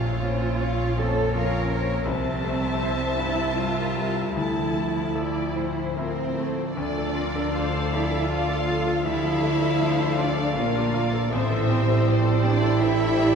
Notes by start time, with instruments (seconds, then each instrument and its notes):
Already playing: grand piano A#1, double bass section A#1, harp A#2 F3 F4, viola section C3 F4, cello section F4, violin section C#5 F5
0.10 harp C#4
0.24 viola section A#3 C#4, grand piano C#4, violin section C5 C#5
0.35 harp F4
0.60 harp C#4, viola section C#4 F4, grand piano F4 C#5, violin section C#5 F5
0.85 harp F4
0.97 grand piano F2, viola section A#3 C#4, cello section A4, violin section C5 C#5
1.09 harp C#4
1.34 harp F3, viola section C#4 F4, grand piano F4 C#5, cello section A#4, violin section C#5 F5
1.59 harp C#4
1.70 viola section A#3 C#4, grand piano C#4, violin section C5 C#5
1.82 harp F4
2.05 grand piano C2, double bass section C2, harp C3, cello section C4, violin section C5
2.10 viola section G3 E5, violin section A5
2.33 harp C4
2.44 grand piano A3
2.82 harp C4, grand piano E4 C5
3.08 harp G4
3.19 grand piano G2, cello section E4
3.32 harp C4
3.57 harp G3, cello section F4, violin section A#4, grand piano C5 E5
3.83 harp C4
3.96 grand piano G3
4.09 harp E4
4.36 double bass section D2, grand piano D2, harp D3, viola section F3 E4, cello section E4, violin section A4 A5
4.62 harp F3
4.76 grand piano A3
5.15 grand piano F3 A4, violin section D5
5.56 grand piano A2, violin section C5
5.96 cello section C4, harp D4, grand piano E4 F4, violin section A#4 C5
6.37 grand piano A3, violin section A4
6.76 grand piano D2, double bass section D2, harp D3, french horn section F3 D4, cello section D4, viola section F4 A4, violin section D5
6.98 grand piano A4
7.15 harp D4, grand piano F4, viola section A#4
7.36 grand piano A4
7.54 grand piano F4, viola section A4 C5, violin section F5
7.73 grand piano A4, harp D5
7.93 grand piano F3, cello section E4, viola section D5, violin section E5
8.11 grand piano A4, harp A5
8.30 grand piano F4, cello section F4, viola section A4 D5, violin section F5
8.49 grand piano A4, harp D5
8.68 grand piano F4, viola section A4
8.87 grand piano A4
9.06 grand piano D2, harp D3, cello section E4, viola section G4 A4, violin section E5 F5
9.24 grand piano F3
9.43 viola section F3, grand piano A3, harp D4
9.62 grand piano A4
9.81 grand piano F3, viola section A4 C5
9.99 grand piano A4, harp D5
10.18 cello section D4, grand piano F4, violin section D5, viola section D5, harp F5
10.37 grand piano A4, harp A5
10.56 double bass section A#1, cello section A#3, grand piano F4, viola section G4 D5, violin section A#4, harp F5
10.75 grand piano F4, harp D5
10.94 grand piano F4, viola section F4
11.13 harp F4, grand piano A4
11.30 double bass section A1, grand piano A1, harp A2, french horn section G3 E4, cello section C4, viola section A4 C5, violin section C5 E5
11.50 harp E3, grand piano A4
11.70 harp E4, grand piano G4, viola section G4
11.89 harp G4, grand piano A4
12.08 viola section F3 C5, grand piano G4, harp A4, violin section D5
12.25 grand piano A4, harp E5
12.43 cello section D4, viola section E4, grand piano G4, violin section D5, harp G5
12.62 grand piano A4, harp A5
12.81 cello section E4, grand piano G4, viola section G4 A4, violin section C5 E5
13.00 grand piano A4, harp E5
13.17 grand piano G4, harp A4, viola section D5